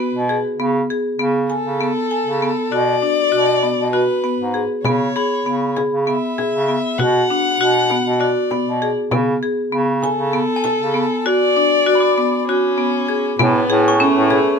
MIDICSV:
0, 0, Header, 1, 7, 480
1, 0, Start_track
1, 0, Tempo, 609137
1, 471, Time_signature, 7, 3, 24, 8
1, 11498, End_track
2, 0, Start_track
2, 0, Title_t, "Glockenspiel"
2, 0, Program_c, 0, 9
2, 4069, Note_on_c, 0, 83, 63
2, 5703, Note_off_c, 0, 83, 0
2, 8324, Note_on_c, 0, 80, 67
2, 9072, Note_off_c, 0, 80, 0
2, 9418, Note_on_c, 0, 83, 50
2, 9459, Note_on_c, 0, 86, 50
2, 10751, Note_off_c, 0, 83, 0
2, 10771, Note_off_c, 0, 86, 0
2, 10937, Note_on_c, 0, 85, 76
2, 11498, Note_off_c, 0, 85, 0
2, 11498, End_track
3, 0, Start_track
3, 0, Title_t, "Harmonium"
3, 0, Program_c, 1, 20
3, 10554, Note_on_c, 1, 80, 81
3, 10557, Note_on_c, 1, 61, 81
3, 10561, Note_on_c, 1, 71, 73
3, 11498, Note_off_c, 1, 61, 0
3, 11498, Note_off_c, 1, 71, 0
3, 11498, Note_off_c, 1, 80, 0
3, 11498, End_track
4, 0, Start_track
4, 0, Title_t, "Violin"
4, 0, Program_c, 2, 40
4, 0, Note_on_c, 2, 71, 76
4, 295, Note_off_c, 2, 71, 0
4, 1176, Note_on_c, 2, 69, 92
4, 2137, Note_on_c, 2, 74, 105
4, 2149, Note_off_c, 2, 69, 0
4, 3090, Note_off_c, 2, 74, 0
4, 3095, Note_on_c, 2, 71, 80
4, 3609, Note_off_c, 2, 71, 0
4, 3815, Note_on_c, 2, 73, 81
4, 4508, Note_off_c, 2, 73, 0
4, 4797, Note_on_c, 2, 76, 81
4, 5500, Note_on_c, 2, 78, 100
4, 5512, Note_off_c, 2, 76, 0
4, 6461, Note_on_c, 2, 74, 76
4, 6472, Note_off_c, 2, 78, 0
4, 7003, Note_off_c, 2, 74, 0
4, 7897, Note_on_c, 2, 69, 93
4, 8881, Note_on_c, 2, 74, 105
4, 8893, Note_off_c, 2, 69, 0
4, 9830, Note_off_c, 2, 74, 0
4, 9835, Note_on_c, 2, 61, 97
4, 10522, Note_off_c, 2, 61, 0
4, 10564, Note_on_c, 2, 59, 106
4, 11007, Note_off_c, 2, 59, 0
4, 11034, Note_on_c, 2, 57, 97
4, 11498, Note_off_c, 2, 57, 0
4, 11498, End_track
5, 0, Start_track
5, 0, Title_t, "Marimba"
5, 0, Program_c, 3, 12
5, 0, Note_on_c, 3, 59, 63
5, 192, Note_off_c, 3, 59, 0
5, 231, Note_on_c, 3, 68, 63
5, 437, Note_off_c, 3, 68, 0
5, 470, Note_on_c, 3, 59, 74
5, 676, Note_off_c, 3, 59, 0
5, 712, Note_on_c, 3, 68, 62
5, 917, Note_off_c, 3, 68, 0
5, 941, Note_on_c, 3, 59, 73
5, 1151, Note_off_c, 3, 59, 0
5, 1179, Note_on_c, 3, 80, 60
5, 1389, Note_off_c, 3, 80, 0
5, 1424, Note_on_c, 3, 59, 67
5, 1632, Note_off_c, 3, 59, 0
5, 1663, Note_on_c, 3, 80, 59
5, 1871, Note_off_c, 3, 80, 0
5, 1908, Note_on_c, 3, 59, 61
5, 2114, Note_off_c, 3, 59, 0
5, 2145, Note_on_c, 3, 66, 73
5, 2352, Note_off_c, 3, 66, 0
5, 2382, Note_on_c, 3, 62, 60
5, 2590, Note_off_c, 3, 62, 0
5, 2617, Note_on_c, 3, 66, 67
5, 2827, Note_off_c, 3, 66, 0
5, 2860, Note_on_c, 3, 59, 57
5, 3069, Note_off_c, 3, 59, 0
5, 3099, Note_on_c, 3, 66, 65
5, 3308, Note_off_c, 3, 66, 0
5, 3340, Note_on_c, 3, 59, 65
5, 3549, Note_off_c, 3, 59, 0
5, 3578, Note_on_c, 3, 68, 61
5, 3787, Note_off_c, 3, 68, 0
5, 3824, Note_on_c, 3, 59, 74
5, 4031, Note_off_c, 3, 59, 0
5, 4065, Note_on_c, 3, 68, 64
5, 4271, Note_off_c, 3, 68, 0
5, 4303, Note_on_c, 3, 59, 65
5, 4510, Note_off_c, 3, 59, 0
5, 4543, Note_on_c, 3, 68, 65
5, 4750, Note_off_c, 3, 68, 0
5, 4786, Note_on_c, 3, 59, 66
5, 4992, Note_off_c, 3, 59, 0
5, 5030, Note_on_c, 3, 68, 65
5, 5234, Note_off_c, 3, 68, 0
5, 5267, Note_on_c, 3, 59, 61
5, 5472, Note_off_c, 3, 59, 0
5, 5513, Note_on_c, 3, 66, 74
5, 5716, Note_off_c, 3, 66, 0
5, 5756, Note_on_c, 3, 62, 62
5, 5957, Note_off_c, 3, 62, 0
5, 5995, Note_on_c, 3, 66, 71
5, 6197, Note_off_c, 3, 66, 0
5, 6233, Note_on_c, 3, 59, 61
5, 6436, Note_off_c, 3, 59, 0
5, 6467, Note_on_c, 3, 66, 64
5, 6673, Note_off_c, 3, 66, 0
5, 6711, Note_on_c, 3, 59, 66
5, 6915, Note_off_c, 3, 59, 0
5, 6950, Note_on_c, 3, 68, 65
5, 7154, Note_off_c, 3, 68, 0
5, 7186, Note_on_c, 3, 59, 73
5, 7392, Note_off_c, 3, 59, 0
5, 7428, Note_on_c, 3, 68, 62
5, 7633, Note_off_c, 3, 68, 0
5, 7664, Note_on_c, 3, 59, 74
5, 7871, Note_off_c, 3, 59, 0
5, 7908, Note_on_c, 3, 80, 67
5, 8114, Note_off_c, 3, 80, 0
5, 8143, Note_on_c, 3, 59, 71
5, 8351, Note_off_c, 3, 59, 0
5, 8383, Note_on_c, 3, 80, 74
5, 8591, Note_off_c, 3, 80, 0
5, 8621, Note_on_c, 3, 59, 68
5, 8830, Note_off_c, 3, 59, 0
5, 8871, Note_on_c, 3, 66, 78
5, 9076, Note_off_c, 3, 66, 0
5, 9112, Note_on_c, 3, 62, 63
5, 9317, Note_off_c, 3, 62, 0
5, 9350, Note_on_c, 3, 66, 77
5, 9556, Note_off_c, 3, 66, 0
5, 9595, Note_on_c, 3, 59, 66
5, 9799, Note_off_c, 3, 59, 0
5, 9843, Note_on_c, 3, 66, 73
5, 10044, Note_off_c, 3, 66, 0
5, 10068, Note_on_c, 3, 59, 68
5, 10275, Note_off_c, 3, 59, 0
5, 10311, Note_on_c, 3, 68, 64
5, 10517, Note_off_c, 3, 68, 0
5, 10555, Note_on_c, 3, 59, 81
5, 10760, Note_off_c, 3, 59, 0
5, 10793, Note_on_c, 3, 68, 72
5, 10998, Note_off_c, 3, 68, 0
5, 11033, Note_on_c, 3, 61, 80
5, 11238, Note_off_c, 3, 61, 0
5, 11273, Note_on_c, 3, 68, 74
5, 11478, Note_off_c, 3, 68, 0
5, 11498, End_track
6, 0, Start_track
6, 0, Title_t, "Bass clarinet"
6, 0, Program_c, 4, 71
6, 99, Note_on_c, 4, 47, 76
6, 297, Note_off_c, 4, 47, 0
6, 453, Note_on_c, 4, 49, 74
6, 653, Note_off_c, 4, 49, 0
6, 931, Note_on_c, 4, 49, 76
6, 1228, Note_off_c, 4, 49, 0
6, 1300, Note_on_c, 4, 49, 67
6, 1496, Note_off_c, 4, 49, 0
6, 1777, Note_on_c, 4, 49, 72
6, 1975, Note_off_c, 4, 49, 0
6, 2143, Note_on_c, 4, 47, 80
6, 2338, Note_off_c, 4, 47, 0
6, 2624, Note_on_c, 4, 47, 73
6, 2915, Note_off_c, 4, 47, 0
6, 2981, Note_on_c, 4, 47, 66
6, 3176, Note_off_c, 4, 47, 0
6, 3460, Note_on_c, 4, 44, 63
6, 3656, Note_off_c, 4, 44, 0
6, 3817, Note_on_c, 4, 49, 76
6, 4014, Note_off_c, 4, 49, 0
6, 4298, Note_on_c, 4, 49, 75
6, 4590, Note_off_c, 4, 49, 0
6, 4656, Note_on_c, 4, 49, 69
6, 4853, Note_off_c, 4, 49, 0
6, 5150, Note_on_c, 4, 49, 75
6, 5341, Note_off_c, 4, 49, 0
6, 5508, Note_on_c, 4, 47, 79
6, 5700, Note_off_c, 4, 47, 0
6, 5984, Note_on_c, 4, 47, 72
6, 6274, Note_off_c, 4, 47, 0
6, 6345, Note_on_c, 4, 47, 79
6, 6538, Note_off_c, 4, 47, 0
6, 6816, Note_on_c, 4, 47, 71
6, 7013, Note_off_c, 4, 47, 0
6, 7178, Note_on_c, 4, 49, 82
6, 7374, Note_off_c, 4, 49, 0
6, 7658, Note_on_c, 4, 49, 79
6, 7952, Note_off_c, 4, 49, 0
6, 8013, Note_on_c, 4, 49, 76
6, 8212, Note_off_c, 4, 49, 0
6, 8501, Note_on_c, 4, 49, 72
6, 8697, Note_off_c, 4, 49, 0
6, 10550, Note_on_c, 4, 45, 87
6, 10744, Note_off_c, 4, 45, 0
6, 10793, Note_on_c, 4, 45, 88
6, 11082, Note_off_c, 4, 45, 0
6, 11145, Note_on_c, 4, 45, 87
6, 11341, Note_off_c, 4, 45, 0
6, 11498, End_track
7, 0, Start_track
7, 0, Title_t, "Frame drum"
7, 3817, Note_on_c, 9, 64, 57
7, 3896, Note_off_c, 9, 64, 0
7, 4546, Note_on_c, 9, 64, 43
7, 4625, Note_off_c, 9, 64, 0
7, 4796, Note_on_c, 9, 64, 16
7, 4875, Note_off_c, 9, 64, 0
7, 5031, Note_on_c, 9, 64, 43
7, 5110, Note_off_c, 9, 64, 0
7, 5507, Note_on_c, 9, 64, 55
7, 5586, Note_off_c, 9, 64, 0
7, 6224, Note_on_c, 9, 64, 43
7, 6303, Note_off_c, 9, 64, 0
7, 6466, Note_on_c, 9, 64, 19
7, 6545, Note_off_c, 9, 64, 0
7, 6705, Note_on_c, 9, 64, 46
7, 6784, Note_off_c, 9, 64, 0
7, 7181, Note_on_c, 9, 64, 62
7, 7260, Note_off_c, 9, 64, 0
7, 7900, Note_on_c, 9, 64, 45
7, 7979, Note_off_c, 9, 64, 0
7, 8154, Note_on_c, 9, 64, 20
7, 8232, Note_off_c, 9, 64, 0
7, 8388, Note_on_c, 9, 64, 47
7, 8467, Note_off_c, 9, 64, 0
7, 10556, Note_on_c, 9, 64, 62
7, 10635, Note_off_c, 9, 64, 0
7, 11036, Note_on_c, 9, 64, 21
7, 11115, Note_off_c, 9, 64, 0
7, 11270, Note_on_c, 9, 64, 48
7, 11348, Note_off_c, 9, 64, 0
7, 11498, End_track
0, 0, End_of_file